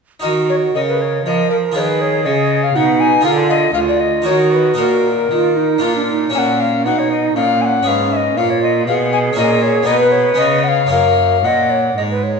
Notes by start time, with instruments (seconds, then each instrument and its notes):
0.20 harpsichord D#4 F#4 A#4, flute F#4, recorder D#5
0.24 cello D#3, harpsichord D#3
0.49 recorder C#5
0.75 cello C#3, harpsichord C#3, flute A#4, recorder D#5
0.89 recorder B4
1.02 recorder C#5
1.25 cello F3, harpsichord F3, flute A#4, recorder D#5
1.50 recorder A#4
1.72 harpsichord F4 G#4 B4
1.76 cello D#3, harpsichord D#3, flute G#4, recorder C#5
1.80 recorder B4
2.01 recorder C#5
2.26 cello C#3, harpsichord C#3, flute G#4, recorder D#5
2.64 recorder F5
2.75 cello B2, harpsichord B2, flute D#4, recorder F#5
3.00 recorder G#5
3.21 harpsichord F4 G#4 A#4
3.25 cello D3, harpsichord D3, flute F4, recorder F5
3.50 recorder D#5
3.74 cello D2, harpsichord D2, flute F4, recorder F5
3.88 recorder D5
4.00 recorder D#5
4.22 harpsichord D#4 F#4 A#4, recorder C#5
4.26 cello D#3, harpsichord D#3, flute F#4
4.53 recorder B4
4.74 harpsichord D#4 F#4 A#4
4.78 cello A#2, harpsichord A#2, flute F#4, recorder A#4
5.30 cello D#3, harpsichord D#3, flute F4
5.57 flute D#4
5.78 harpsichord D4 F4 A#4, flute F4
5.82 cello A#2, harpsichord A#2
5.96 flute D4
6.09 flute D#4
6.30 harpsichord C#4 F#4 A#4
6.34 cello A#2, harpsichord A#2, flute C#4, recorder G#5
6.38 recorder F#5
6.60 recorder F5
6.85 cello B2, harpsichord B2, flute D#4, recorder F#5
6.99 recorder C#5
7.11 recorder D#5
7.35 cello A#2, harpsichord A#2, flute C#4, recorder F5
7.61 recorder F#5 G#5
7.83 cello G#2, harpsichord C#4 G#4 B4
7.87 harpsichord G#2, recorder F5
8.12 recorder E5
8.17 recorder D#5
8.37 cello A#2, harpsichord A#2, flute F4, recorder F5
8.50 recorder C#5
8.62 recorder D#5
8.86 cello B2, harpsichord B2, flute G#4, recorder F5
9.13 recorder G#5
9.33 harpsichord C#4 F#4 A#4
9.37 cello A#2, harpsichord A#2, recorder D#5
9.62 recorder C#5
9.83 cello B2, harpsichord B3 D#4 G#4, recorder D#5
9.87 harpsichord B2, flute B4
10.00 recorder B4
10.12 recorder C#5
10.34 cello C#3, harpsichord B3 C#4 G#4, recorder D#5
10.39 harpsichord C#3
10.64 recorder F#5
10.68 recorder F5
10.86 cello F#2, harpsichord A#3 C#4 A#4
10.91 harpsichord F#2, flute A#4, recorder F5
11.44 cello A#2, harpsichord A#2, flute D#5, recorder F#5
11.70 flute C#5
11.96 cello G#2, harpsichord G#2, flute D#5
12.11 flute B4
12.23 flute C#5